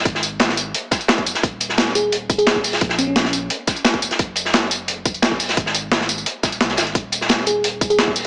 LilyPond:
<<
  \new Staff \with { instrumentName = "FM electric piano" } { \time 4/4 \key ees \minor \tempo 4 = 174 r1 | r4. aes'8 r8. aes'8 r8. | r8 des'16 des'4 r2 r16 | r1 |
r1 | r4. aes'8 r8. aes'8 r8. | }
  \new Staff \with { instrumentName = "Sub bass" } { \clef bass \time 4/4 \key ees \minor aes,,2 r4. ges,,8 | ees,,2 ees,,2 | bes,,2 r4. f,,8 | ges,,2 ges,,2 |
aes,,2 r8 ees,,8 des,8 aes,,8 | ees,,2 ees,,2 | }
  \new DrumStaff \with { instrumentName = "Drums" } \drummode { \time 4/4 <hh bd>16 sn16 <hh tamb>8 <hh sn>16 sn16 <hh tamb>8 hh8 <hh bd sn tamb>16 <hh tamb>16 <hh sn tamb>16 <hh bd>16 <hh tamb>16 <hh sn>16 | <hh bd>8 <hh tamb>16 sn16 <hh sn>8 <hh tamb>8 hh8 <hh bd tamb>16 <hh tamb>16 <hh sn tamb>16 bd16 <hh hho tamb>16 <hh sn>16 | <hh bd>16 sn16 <hh tamb>8 <hh sn>16 sn16 <hh tamb>8 hh8 <hh bd sn tamb>16 <hh tamb>16 <hh sn tamb>16 <hh bd>16 <hh tamb>16 <hh sn>16 | <hh bd>8 <hh tamb>16 sn16 <hh sn>8 <hh tamb>8 hh8 <hh bd tamb>16 <hh tamb>16 <hh sn tamb>16 bd16 <hh hho tamb>16 <hh sn>16 |
<hh bd>16 sn16 <hh tamb>8 <hh sn>16 sn16 <hh tamb>16 tamb16 hh8 <hh bd sn tamb>16 <hh tamb>16 <hh sn tamb>16 <hh sn>16 <hh sn tamb>16 hh16 | <hh bd>8 <hh tamb>16 sn16 <hh sn>8 <hh tamb>8 hh8 <hh bd tamb>16 <hh tamb>16 <hh sn tamb>16 bd16 <hh hho tamb>8 | }
>>